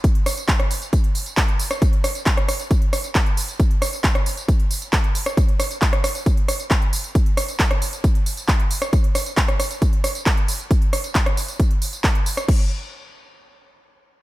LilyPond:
\new DrumStaff \with { instrumentName = "Drums" } \drummode { \time 4/4 \tempo 4 = 135 <hh bd tamb>16 hh16 <hho ss tamb>16 <hh tamb>16 <hc hh bd>16 <hh ss>16 <hho tamb>16 <hh tamb>16 <hh bd tamb>16 hh16 <hho tamb>16 <hh tamb>16 <hc hh bd tamb>16 hh16 <hho tamb>16 <hh ss tamb>16 | <hh bd tamb>16 hh16 <hho ss tamb>16 <hh tamb>16 <hc hh bd tamb>16 <hh ss>16 <hho ss tamb>16 <hh tamb>16 <hh bd tamb>16 hh16 <hho ss tamb>16 <hh tamb>16 <hc hh bd tamb>16 hh16 <hho tamb>16 <hh tamb>16 | <hh bd tamb>16 hh16 <hho ss tamb>16 <hh tamb>16 <hc hh bd>16 <hh ss>16 <hho tamb>16 <hh tamb>16 <hh bd tamb>16 hh16 <hho tamb>16 <hh tamb>16 <hc hh bd tamb>16 hh16 <hho tamb>16 <hh ss tamb>16 | <hh bd tamb>16 hh16 <hho ss tamb>16 <hh tamb>16 <hc hh bd tamb>16 <hh ss>16 <hho ss tamb>16 <hh tamb>16 <hh bd tamb>16 hh16 <hho ss tamb>16 <hh tamb>16 <hc hh bd tamb>16 hh16 <hho tamb>16 <hh tamb>16 |
<hh bd tamb>16 hh16 <hho ss tamb>16 <hh tamb>16 <hc hh bd tamb>16 <hh ss>16 <hho tamb>16 <hh tamb>16 <hh bd tamb>16 hh16 <hho tamb>16 <hh tamb>16 <hc hh bd tamb>16 hh16 <hho tamb>16 <hh ss tamb>16 | <hh bd tamb>16 hh16 <hho ss tamb>16 <hh tamb>16 <hc hh bd tamb>16 <hh ss>16 <hho ss tamb>16 <hh tamb>16 <hh bd tamb>16 hh16 <hho ss tamb>16 <hh tamb>16 <hc hh bd>16 hh16 <hho tamb>16 <hh tamb>16 | <hh bd tamb>16 hh16 <hho ss tamb>16 <hh tamb>16 <hc hh bd tamb>16 <hh ss>16 <hho tamb>16 <hh tamb>16 <hh bd tamb>16 hh16 <hho tamb>16 <hh tamb>16 <hc hh bd tamb>16 hh16 <hho tamb>16 <hh ss tamb>16 | <cymc bd>4 r4 r4 r4 | }